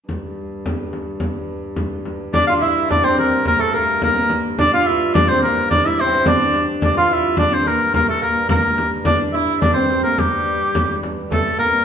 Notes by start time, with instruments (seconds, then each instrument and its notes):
0.09 hurdy-gurdy G2, frame drum
0.66 frame drum
0.93 frame drum
1.20 frame drum
1.76 frame drum
2.05 frame drum
2.33 hurdy-gurdy G2, viola da gamba D4, lute D4, shawm D5, frame drum
2.47 lute F4, shawm F5
2.60 viola da gamba E4, lute E4, shawm E5, frame drum
2.89 viola da gamba D4, lute D4, shawm D5, frame drum
3.03 viola da gamba C4, lute C4, shawm C5
3.18 lute A#3, shawm A#4, frame drum
3.45 lute A#3, viola da gamba A#3, shawm A#4, frame drum
3.59 lute A3, viola da gamba A3, shawm A4
3.74 lute A#3, shawm A#4, frame drum
4.02 viola da gamba A#3, lute A#3, shawm A#4, frame drum
4.11 viola da gamba C4
4.17 viola da gamba A#3
4.30 frame drum
4.58 viola da gamba D4, lute D4, shawm D5, frame drum
4.71 viola da gamba F4, lute F4, shawm F5
4.86 lute E4, shawm E5, frame drum
5.13 viola da gamba D4, lute D4, shawm D5, frame drum
5.28 viola da gamba C4, lute C4, shawm C5
5.40 viola da gamba A#3, shawm A#4, frame drum
5.45 lute A#3
5.69 viola da gamba D4, lute D4, shawm D5, frame drum
5.84 viola da gamba E4, lute E4, shawm E5
5.99 lute C4, shawm C5, frame drum
6.07 lute C4
6.14 lute C4
6.25 viola da gamba D4, lute D4, shawm D5, frame drum
6.54 frame drum
6.80 hurdy-gurdy G2, viola da gamba D4, lute D4, frame drum
6.85 shawm D5
6.94 viola da gamba F4, lute F4, shawm F5
7.10 lute E4, shawm E5, frame drum
7.37 viola da gamba D4, lute D4, shawm D5, frame drum
7.51 viola da gamba C4, shawm C5
7.65 viola da gamba A#3, lute A#3, shawm A#4, frame drum
7.94 lute A#3, viola da gamba A#3, shawm A#4, frame drum
8.08 viola da gamba A3, lute A3, shawm A4
8.22 viola da gamba A#3, lute A#3, shawm A#4, frame drum
8.49 viola da gamba A#3, lute A#3, shawm A#4, frame drum
8.78 frame drum
9.05 viola da gamba D4, lute D4, shawm D5, frame drum
9.32 viola da gamba E4, lute E4, shawm E5, frame drum
9.61 viola da gamba D4, lute D4, shawm D5, frame drum
9.74 lute C4, viola da gamba C4, shawm C5
9.90 frame drum
10.04 viola da gamba A3 A#3, lute A#3, shawm A#4
10.09 viola da gamba A#3
10.18 viola da gamba G3, lute G3, shawm G4, frame drum
10.75 frame drum
11.03 frame drum
11.30 hurdy-gurdy G2, viola da gamba A3, lute A3, shawm A4, frame drum
11.56 viola da gamba A#3, lute A#3, shawm A#4
11.65 viola da gamba C4
11.71 viola da gamba A#3